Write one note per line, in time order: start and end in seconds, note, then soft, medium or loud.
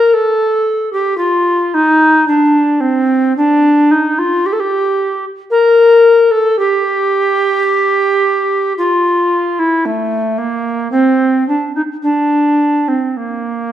0.00 0.15 A#4 medium
0.13 0.92 A4 medium
0.92 1.17 G4 medium
1.17 1.75 F4 medium
1.74 2.27 D#4 medium
2.27 2.82 D4 medium
2.80 3.35 C4 medium
3.37 3.92 D4 medium
3.91 4.20 D#4 medium
4.18 4.47 F4 medium
4.46 4.54 G4 medium
4.53 4.61 A4 medium
4.60 5.25 G4 medium
5.50 6.32 A#4 medium
6.31 6.58 A4 medium
6.59 8.73 G4 medium
8.78 9.60 F4 medium
9.59 9.87 E4 medium
9.85 10.39 A3 medium
10.38 10.91 A#3 medium
10.91 11.46 C4 medium
11.48 11.74 D4 medium
11.75 11.81 D#4 medium
12.02 12.89 D4 medium
12.88 13.18 C4 medium
13.16 13.72 A#3 medium